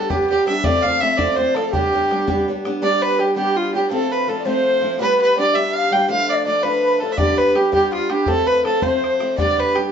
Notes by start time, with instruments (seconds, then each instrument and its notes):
Already playing: steel-string acoustic guitar G4, flute A4, fiddle A4
0.10 steel-string acoustic guitar G3 B3 D4 G4, fiddle G4, flute G4, bodhran
0.21 bodhran
0.29 steel-string acoustic guitar G3 B3 D4 G4, fiddle G4
0.47 steel-string acoustic guitar G3 B3 D4 G4, fiddle E5, bodhran
0.64 steel-string acoustic guitar F3 A3 C4 F4, fiddle D5, flute D5, bodhran
0.82 steel-string acoustic guitar F3 A3 C4 F4, fiddle F5, flute F5, bodhran
1.00 steel-string acoustic guitar F3 A3 C4 F4, fiddle E5, flute E5
1.12 flute E5
1.17 steel-string acoustic guitar F3 A3 C4 F4, fiddle D5, flute D5, bodhran
1.29 bodhran
1.36 steel-string acoustic guitar F3 A3 C4, fiddle C5
1.40 steel-string acoustic guitar F4
1.54 steel-string acoustic guitar F3 A3 C4 F4, fiddle A4, flute A4, bodhran
1.67 flute A4
1.72 steel-string acoustic guitar G3 B3 D4 G4, fiddle G4, flute G4, bodhran
1.93 steel-string acoustic guitar G3 B3 D4 G4, bodhran
2.11 steel-string acoustic guitar G3 B3 D4 G4, bodhran
2.27 steel-string acoustic guitar G3 B3 D4 G4, bodhran
2.37 bodhran
2.48 steel-string acoustic guitar G3 B3 D4 G4
2.65 steel-string acoustic guitar G3 B3 D4 G4, bodhran
2.82 steel-string acoustic guitar G3 B3 D4 G4, flute D5, fiddle D5
3.02 fiddle B4, flute B4
3.19 steel-string acoustic guitar G3 B3 D4 G4, flute G4, fiddle G4
3.36 steel-string acoustic guitar G3 B3 D4 G4, fiddle G4, flute G4
3.56 flute F4, fiddle F4
3.74 steel-string acoustic guitar G3 B3 D4 G4, flute G4, fiddle G4
3.90 steel-string acoustic guitar F3 A3 C4 F4, fiddle A4, flute A4
4.11 flute B4, fiddle B4
4.27 steel-string acoustic guitar F3 A3 C4 F4, flute A4, fiddle A4
4.39 flute D5
4.45 steel-string acoustic guitar F3 A3 C4 F4, flute C5, fiddle C5
4.81 steel-string acoustic guitar F3 A3 C4 F4
4.99 steel-string acoustic guitar G3 B3 D4 G4, flute B4, fiddle B4
5.21 fiddle B4
5.36 steel-string acoustic guitar G3 B3 D4 G4, flute D5, fiddle D5
5.53 steel-string acoustic guitar G3 B3 D4 G4, flute E5, fiddle E5
5.75 fiddle F5, flute F5
5.91 steel-string acoustic guitar G3 B3 D4 G4, fiddle G5
6.09 steel-string acoustic guitar F3 A3 D4 F4, flute F5, fiddle F5
6.29 fiddle D5, flute D5
6.46 steel-string acoustic guitar F3 A3 D4 F4, fiddle D5, flute D5
6.63 steel-string acoustic guitar F3 A3 D4 F4, fiddle B4, flute B4
7.00 steel-string acoustic guitar F3 A3 D4 F4, fiddle A4, flute A4
7.12 fiddle E5
7.17 steel-string acoustic guitar G3 B3 D4 G4, fiddle D5, flute D5, bodhran
7.37 flute B4, fiddle B4, bodhran
7.54 steel-string acoustic guitar G3 B3 D4 G4, fiddle G4, flute G4, bodhran
7.72 steel-string acoustic guitar G3 B3 D4 G4, flute G4, fiddle G4, bodhran
7.92 flute F4, fiddle F4, bodhran
8.10 steel-string acoustic guitar G3 B3 D4 G4, flute G4, fiddle G4, bodhran
8.26 steel-string acoustic guitar F3 A3 C4 F4, flute A4, fiddle A4, bodhran
8.47 flute B4, fiddle B4, bodhran
8.64 steel-string acoustic guitar F3 A3 C4 F4, flute A4, fiddle A4, bodhran
8.81 steel-string acoustic guitar F3 A3 C4 F4, flute C5, fiddle C5, bodhran
9.04 bodhran
9.19 steel-string acoustic guitar F3 A3 C4 F4, bodhran
9.36 steel-string acoustic guitar G3 B3 D4 G4, flute D5, fiddle D5, bodhran
9.58 fiddle B4, bodhran
9.74 steel-string acoustic guitar G3 B3 D4 G4, flute G4, fiddle G4, bodhran